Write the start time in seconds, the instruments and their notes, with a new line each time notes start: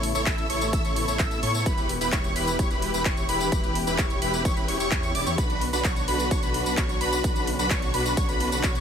Already playing: detuned saw bass A1, string section C#3 B3 E4
0.03 open hi-hat
0.15 detuned saw bass A1, supersaw synth E4 A4 C#5, analog synth lead C#6, closed hi-hat, tambourine
0.26 detuned saw bass A1, supersaw synth E4 A4 E5, analog synth lead E6, kick, clap, closed hi-hat, tambourine
0.38 closed hi-hat, tambourine
0.50 detuned saw bass A1, supersaw synth E4 A4 C#5, analog synth lead C#6, open hi-hat
0.61 closed hi-hat, tambourine
0.73 detuned saw bass A1, supersaw synth E4 A4 E5, analog synth lead E6, kick, closed hi-hat, tambourine
0.85 detuned saw bass A1, supersaw synth E4 A4 C#5, analog synth lead C#6, closed hi-hat, tambourine
0.96 open hi-hat
1.08 detuned saw bass A1, supersaw synth E4 A4 C#5, analog synth lead C#6, closed hi-hat, tambourine
1.19 detuned saw bass A1, supersaw synth E4 A4 E5, analog synth lead E6, kick, clap, closed hi-hat, tambourine
1.31 closed hi-hat, tambourine
1.43 detuned saw bass A2, supersaw synth E4 A4 C#5, analog synth lead C#6, open hi-hat
1.54 closed hi-hat, tambourine
1.66 detuned saw bass E1, string section E3 G4, supersaw synth E4 G4 B4, analog synth lead B5, kick, closed hi-hat, tambourine
1.78 closed hi-hat, tambourine
1.89 open hi-hat
2.01 detuned saw bass E1, supersaw synth E4 G4 B4, analog synth lead B5, open hi-hat, tambourine
2.12 detuned saw bass E1, supersaw synth E4 G4 C#5, analog synth lead C#6, kick, clap, closed hi-hat, tambourine
2.24 closed hi-hat, tambourine
2.36 detuned saw bass E1, supersaw synth E4 G4 B4, analog synth lead B5, open hi-hat
2.47 closed hi-hat, tambourine
2.59 detuned saw bass E1, supersaw synth E4 G4 C#5, analog synth lead C#6, kick, closed hi-hat, tambourine
2.71 detuned saw bass E1, supersaw synth E4 G4 B4, analog synth lead B5, closed hi-hat, tambourine
2.82 open hi-hat
2.94 detuned saw bass E1, supersaw synth E4 G4 B4, analog synth lead B5, closed hi-hat, tambourine
3.05 detuned saw bass E1, supersaw synth E4 G4 C#5, analog synth lead C#6, kick, clap, closed hi-hat, tambourine
3.17 closed hi-hat, tambourine
3.29 detuned saw bass E1, supersaw synth E4 G4 B4, analog synth lead B5, open hi-hat
3.40 closed hi-hat, tambourine
3.52 detuned saw bass E1, string section C#4, supersaw synth E4 G4 B4, analog synth lead B5, kick, closed hi-hat, tambourine
3.64 closed hi-hat, tambourine
3.75 open hi-hat
3.87 detuned saw bass E1, supersaw synth E4 G4 B4, analog synth lead B5, closed hi-hat, tambourine
3.98 detuned saw bass E1, supersaw synth E4 G4 C#5, analog synth lead C#6, kick, clap, closed hi-hat, tambourine
4.10 closed hi-hat, tambourine
4.22 detuned saw bass E1, supersaw synth E4 G4 B4, analog synth lead B5, open hi-hat
4.34 closed hi-hat, tambourine
4.45 detuned saw bass E1, supersaw synth E4 G4 C#5, analog synth lead C#6, kick, closed hi-hat, tambourine
4.57 detuned saw bass E1, supersaw synth E4 G4 B4, analog synth lead B5, closed hi-hat, tambourine
4.68 detuned saw bass E1, supersaw synth E4 G4 C#5, analog synth lead C#6, open hi-hat
4.80 detuned saw bass E1, supersaw synth E4 G4 C#5, analog synth lead C#6, closed hi-hat, tambourine
4.91 detuned saw bass E2, supersaw synth E4 G4 C#5, kick, clap, closed hi-hat, tambourine
5.03 closed hi-hat, tambourine
5.15 detuned saw bass E1, supersaw synth E4 G4 D5, analog synth lead D6, open hi-hat
5.26 detuned saw bass E2, supersaw synth E4 G4 C#5, analog synth lead C#6, closed hi-hat, tambourine
5.38 detuned saw bass B1, string section D3 B3 F#4, supersaw synth D4 F#4 B4, analog synth lead B5, kick, closed hi-hat, tambourine
5.50 closed hi-hat, tambourine
5.61 open hi-hat
5.73 detuned saw bass B1, supersaw synth D4 F#4 B4, analog synth lead B5, open hi-hat, tambourine
5.84 detuned saw bass B1, supersaw synth D4 F#4 C#5, analog synth lead C#6, kick, clap, closed hi-hat, tambourine
5.96 closed hi-hat, tambourine
6.08 detuned saw bass B1, supersaw synth D4 F#4 B4, analog synth lead B5, open hi-hat
6.19 closed hi-hat, tambourine
6.31 detuned saw bass B1, supersaw synth D4 F#4 C#5, analog synth lead C#6, kick, closed hi-hat, tambourine
6.43 detuned saw bass B1, supersaw synth D4 F#4 B4, analog synth lead B5, closed hi-hat, tambourine
6.54 open hi-hat
6.66 detuned saw bass B1, supersaw synth D4 F#4 B4, analog synth lead B5, closed hi-hat, tambourine
6.77 detuned saw bass B1, supersaw synth D4 F#4 C#5, analog synth lead C#6, kick, clap, closed hi-hat, tambourine
6.89 closed hi-hat, tambourine
7.01 detuned saw bass B1, supersaw synth D4 F#4 B4, analog synth lead B5, open hi-hat
7.12 closed hi-hat, tambourine
7.24 detuned saw bass B1, string section C#4, supersaw synth D4 F#4 B4, analog synth lead B5, kick, closed hi-hat, tambourine
7.36 closed hi-hat, tambourine
7.47 open hi-hat
7.59 detuned saw bass B1, supersaw synth D4 F#4 B4, analog synth lead B5, closed hi-hat, tambourine
7.70 detuned saw bass B1, supersaw synth D4 F#4 C#5, analog synth lead C#6, kick, clap, closed hi-hat, tambourine
7.82 closed hi-hat, tambourine
7.94 detuned saw bass B1, supersaw synth D4 F#4 B4, analog synth lead B5, open hi-hat
8.06 closed hi-hat, tambourine
8.17 detuned saw bass B1, supersaw synth D4 F#4 C#5, analog synth lead C#6, kick, closed hi-hat, tambourine
8.29 detuned saw bass B1, supersaw synth D4 F#4 B4, analog synth lead B5, closed hi-hat, tambourine
8.40 open hi-hat
8.52 detuned saw bass B1, supersaw synth D4 F#4 B4, analog synth lead B5, closed hi-hat, tambourine
8.63 detuned saw bass B1, supersaw synth D4 F#4 C#5, analog synth lead C#6, kick, clap, closed hi-hat, tambourine
8.75 closed hi-hat, tambourine